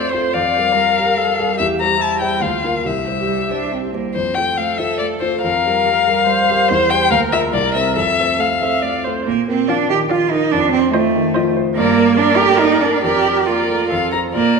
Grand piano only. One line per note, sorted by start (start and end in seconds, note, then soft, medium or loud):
0.00 0.35 F2 soft
0.00 0.13 C4 soft
0.00 0.14 F4 soft
0.00 0.14 A4 soft
0.13 0.32 C4 soft
0.13 0.33 F4 soft
0.13 0.33 A4 soft
0.35 0.55 F2 soft
0.57 0.94 G3 soft
0.57 0.94 G4 soft
0.57 0.94 A#4 soft
0.99 1.35 G3 soft
0.99 1.35 G4 soft
0.99 1.35 A#4 soft
1.39 1.57 G3 soft
1.39 1.57 G4 soft
1.39 1.57 A#4 soft
1.60 1.79 E2 soft
1.80 2.17 G3 soft
1.80 2.17 G4 soft
1.80 2.18 C5 soft
2.21 2.40 G3 soft
2.21 2.40 G4 soft
2.21 2.40 C5 soft
2.41 2.62 D2 soft
2.64 2.83 A#3 soft
2.64 2.83 F4 soft
2.64 2.84 A#4 soft
2.86 3.06 C2 soft
3.07 3.46 G3 soft
3.07 3.46 G4 soft
3.07 3.46 C5 soft
3.51 3.89 G3 soft
3.51 3.90 G4 soft
3.51 3.90 C5 soft
3.94 4.13 G3 soft
3.94 4.13 G4 soft
3.94 4.13 C5 soft
4.16 4.36 F2 soft
4.37 4.75 A3 soft
4.37 4.75 F4 soft
4.37 4.75 C5 soft
4.79 5.18 A3 soft
4.79 5.18 F4 soft
4.79 5.18 C5 soft
5.22 5.42 A3 soft
5.22 5.42 F4 soft
5.22 5.42 C5 soft
5.44 5.65 F2 soft
5.66 6.03 G3 soft
5.66 6.03 G4 soft
5.66 6.03 A#4 soft
6.07 6.45 G3 soft
6.07 6.45 G4 soft
6.07 6.45 A#4 soft
6.50 6.68 G3 soft
6.50 6.68 G4 soft
6.50 6.68 A#4 soft
6.71 6.90 E2 medium
6.91 7.09 G3 soft
6.91 7.10 G4 soft
6.91 7.10 C5 soft
7.10 7.31 D2 medium
7.32 7.51 A#3 soft
7.32 7.52 F4 soft
7.32 7.52 A#4 soft
7.53 7.74 C2 soft
7.75 7.94 G3 soft
7.75 7.95 C4 soft
7.75 7.95 C5 soft
7.97 8.18 F2 soft
8.20 8.58 A3 soft
8.20 8.58 C4 soft
8.20 8.59 C5 soft
8.62 9.01 A3 soft
8.62 9.01 C4 soft
8.62 9.02 C5 soft
9.07 9.26 A3 soft
9.07 9.26 C4 soft
9.07 9.26 C5 soft
9.28 10.49 A#2 medium
9.48 9.82 A#4 soft
9.69 10.03 F3 soft
9.90 10.11 D#3 soft
10.11 10.44 F3 soft
10.32 10.52 A#4 soft
10.53 11.74 F2 medium
10.74 11.07 C5 soft
10.95 11.28 F3 soft
11.15 11.36 D#3 soft
11.36 11.69 F3 medium
11.57 11.77 C5 medium
11.77 13.00 G2 medium
11.98 12.31 A#4 medium
12.18 12.51 A#3 medium
12.40 12.60 A3 soft
12.61 12.95 A#3 soft
12.82 13.04 A#4 soft
13.04 13.87 F2 soft
13.26 13.60 A#4 soft
13.48 13.82 A#3 soft
13.70 13.90 A3 soft
13.92 14.33 F2 soft
14.13 14.32 F4 soft
14.13 14.32 C5 soft
14.35 14.60 A#2 medium
14.56 14.60 D5 soft